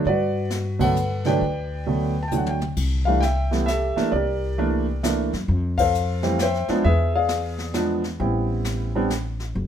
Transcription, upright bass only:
0.05 G2
1.41 D2
2.77 C2
3.97 muted upright bass stroke
4.12 C2
5.33 F#2
5.48 F2
6.69 muted upright bass stroke
6.84 E2
8.20 A1
9.55 F#1

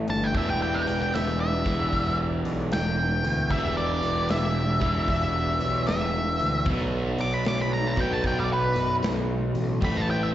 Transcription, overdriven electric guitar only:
Already playing: A2 E3 A3
0.33 E2 B2 E3
1.64 E2 B2 E3
3.49 E2 B2 E3
4.81 E2 B2 E3
6.66 B2 F#3 B3
7.96 B2 F#3 B3
9.81 A2 E3 A3

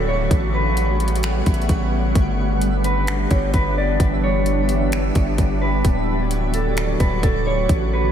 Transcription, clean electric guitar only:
0.08 C#5
0.55 B4
2.85 B4
3.31 C#5
3.54 B4
3.78 D5
4.24 C#5
5.62 B4
6.54 A4
7.00 B4
7.23 A4
7.47 C#5
7.93 B4

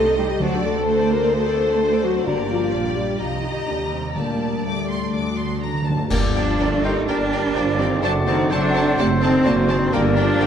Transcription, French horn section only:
Already playing: A4
0.18 G4
0.41 F#4
0.65 A4
1.11 A#4
1.36 A4
2.04 F#4
2.27 D4
2.51 F4
2.96 G4
3.20 F4
3.44 D#4
3.68 D4
3.92 C4
4.16 A#3
4.65 A3
6.10 A#3 D4
8.03 C4
9.92 A#3 D4

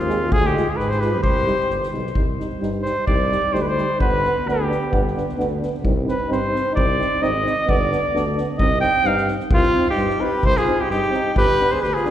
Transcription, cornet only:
Already playing: F4
0.32 G#4
0.47 G4
0.69 G#4
0.77 B4
0.90 C5
1.00 B4
1.23 C5
2.83 C5
3.07 D5
3.53 C5
3.62 B4
3.68 C5
4.01 B4
4.48 G4
6.10 B4
6.33 C5
6.75 D5
7.23 D#5
7.70 D5
8.57 D#5
8.81 G5
9.07 F5
9.54 F4
9.90 G4
10.20 B4
10.45 C5
10.57 G#4
10.80 G4
10.91 G4
11.38 B4
11.72 C5
11.81 B4
11.94 G#4

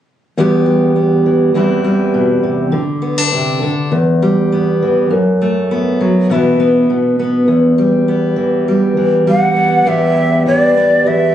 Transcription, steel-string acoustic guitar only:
0.37 E2 E3 G3 B3 G4
0.66 G3
0.96 B3
1.26 E3
1.54 E2 E3 G3 C4 E4
1.84 G3
2.14 B2
2.43 C3
2.72 D3
3.02 B3
3.18 D4
3.32 C3
3.62 D3
3.92 E2
4.22 G3
4.52 B3
4.82 E3
5.11 F#2
5.42 A3
5.71 B3
6.01 F#3
6.29 B2 E3 B3 E4
6.60 B3
6.90 B2
7.19 B3
7.48 E2
7.78 G3
8.08 B3
8.36 E3
8.68 G3
8.97 E3
9.27 G3
9.56 B3
9.86 E2 G4
10.46 E3
10.77 B3
11.06 E2 E4

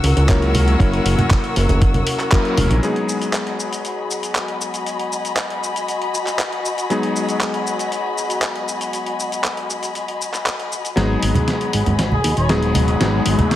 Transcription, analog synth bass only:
0.04 C#2
0.17 C#2
0.80 F#1
1.05 F#1
1.57 F#1
1.70 F#1
2.58 E1
2.71 A#1
10.97 G#1
11.23 G#1
11.74 G#1
11.87 G#1
12.24 D#2
12.37 D#1
13.01 G#1
13.26 G#1

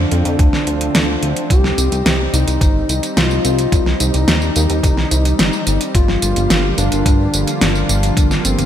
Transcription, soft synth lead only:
Already playing: D4
1.50 G4
2.34 D#4
3.17 F4
4.00 D#4
5.95 F4
6.78 D4
7.62 D4
8.45 C4

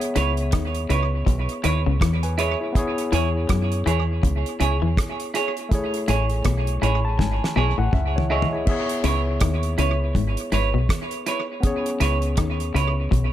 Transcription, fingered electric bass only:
0.17 C#2
0.53 D#2
0.90 C#2
1.27 B1
1.65 D#2
1.87 C#2
2.02 E2
3.13 E2
3.50 F#2
3.87 E2
4.24 C#2
4.61 C#2
4.82 E2
6.09 A1
6.46 B1
6.83 A1
7.19 G#1
7.57 B1
7.78 A1
7.93 C#2
9.04 C#2
9.41 D#2
9.78 C#2
10.15 G#1
10.52 G#1
10.74 B1
12.01 C#2
12.38 D#2
12.75 C#2
13.12 B1

